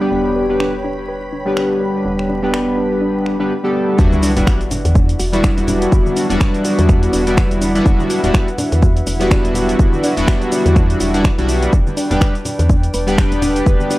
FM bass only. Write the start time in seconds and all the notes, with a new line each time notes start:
0.11 E1
2.05 E1
3.99 E1
4.37 E1
4.85 E2
5.20 E1
5.58 E1
5.92 E1
6.30 E1
6.79 E2
7.13 E1
7.51 E1
7.86 E1
8.24 E1
8.72 E2
9.07 E1
9.45 E1
9.79 E1
10.17 E1
10.66 E2
11.00 E1
11.38 B1
11.73 E1
12.11 E1
12.59 E2
12.94 E1
13.32 E1
13.66 E1